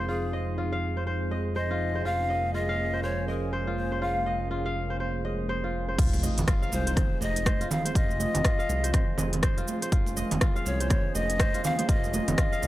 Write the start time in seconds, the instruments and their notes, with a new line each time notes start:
Already playing: analog synth bass F1, analog synth pad F3 G#3 C4 D#4 G#4, kora D#5
0.00 kora C5
0.08 kora F4, pan flute G#4
0.33 kora D#5
0.58 kora F4
0.72 kora F5
0.97 kora C5
1.07 kora C5
1.31 kora D#5
1.56 kora C5, pan flute D#5
1.71 kora F4
1.95 kora C5
2.05 analog synth bass F1, analog synth pad G#3 A#3 C#4, kora F4, pan flute F5
2.30 kora D#5
2.54 kora F4, pan flute D#5
2.69 kora F5
2.93 kora C5
3.03 kora C5, pan flute C#5
3.28 pan flute A#4, kora D#5
3.53 kora C5
3.67 kora F4
3.77 pan flute C5
3.92 kora C5
4.02 kora F4, pan flute F5
4.26 kora D#5
4.51 kora F4
4.66 kora F5
4.90 kora C5
5.00 kora C5
5.25 kora D#5
5.49 kora C5
5.64 kora F4
5.88 kora C5
5.98 analog synth bass F1, analog synth pad F3 G#3 C4 D#4 G#4, kick, closed hi-hat, crash, sub drop, shaker
6.13 muted conga, shaker
6.23 kora D#5, high conga, shaker
6.38 analog synth bass F1, closed hi-hat, low conga, shaker
6.48 kora F4, kick, cross-stick, closed hi-hat, shaker
6.62 kora F5, shaker
6.72 analog synth bass C2, pan flute C5, muted conga, shaker
6.87 kora C5, closed hi-hat, shaker
6.96 kora C5, kick, cross-stick, closed hi-hat, muted conga, high conga, low conga, shaker
7.21 analog synth bass F1, kora D#5, pan flute D#5, muted conga, high conga, shaker
7.36 closed hi-hat, shaker
7.46 kora C5, kick, cross-stick, closed hi-hat, high conga, shaker
7.61 analog synth bass F1, kora F4, closed hi-hat, muted conga, shaker
7.71 pan flute F5, low conga, shaker
7.85 kora C5, closed hi-hat, muted conga, high conga, shaker
7.95 analog synth bass F1, kora F4, analog synth pad F4, pan flute D#5, kick, closed hi-hat, shaker
8.09 muted conga, shaker
8.20 kora D#5, high conga, shaker
8.34 analog synth bass F1, closed hi-hat, low conga, shaker
8.44 kora F4, kick, cross-stick, closed hi-hat, muted conga, shaker
8.59 kora F5, shaker
8.69 analog synth bass C2, muted conga, shaker
8.84 kora C5, closed hi-hat, shaker
8.93 kora C5, kick, cross-stick, closed hi-hat, muted conga, high conga, low conga, shaker
9.18 analog synth bass F1, kora D#5, muted conga, high conga, low conga, shaker
9.33 closed hi-hat, low conga, shaker
9.43 kora C5, kick, cross-stick, closed hi-hat, shaker
9.57 analog synth bass F1, kora F4, closed hi-hat, muted conga, high conga, shaker
9.68 high conga, shaker
9.82 kora C5, closed hi-hat, muted conga, shaker
9.92 analog synth bass F1, analog synth pad A#3 C#4, kora F4, kick, closed hi-hat, shaker
10.06 muted conga, shaker
10.17 kora D#5, high conga, shaker
10.31 analog synth bass F1, closed hi-hat, low conga, shaker
10.41 kora F4, kick, cross-stick, closed hi-hat, muted conga, shaker
10.56 kora F5, shaker
10.66 analog synth bass C2, pan flute C#5, muted conga, shaker
10.80 kora C5, closed hi-hat, shaker
10.90 kora C5, kick, cross-stick, closed hi-hat, muted conga, high conga, low conga, shaker
11.15 analog synth bass F1, kora D#5, pan flute D#5, muted conga, high conga, shaker
11.30 closed hi-hat, shaker
11.39 kora C5, kick, cross-stick, closed hi-hat, high conga, shaker
11.54 analog synth bass F1, kora F4, closed hi-hat, muted conga, shaker
11.64 pan flute F5, low conga, shaker
11.79 kora C5, closed hi-hat, muted conga, high conga, shaker
11.89 analog synth bass F1, kora F4, pan flute D#5, kick, closed hi-hat, shaker
12.04 muted conga, shaker
12.13 kora D#5, high conga, shaker
12.28 analog synth bass F1, closed hi-hat, low conga, shaker
12.38 kora F4, kick, cross-stick, closed hi-hat, shaker
12.52 kora F5, shaker
12.62 analog synth bass C2, muted conga, shaker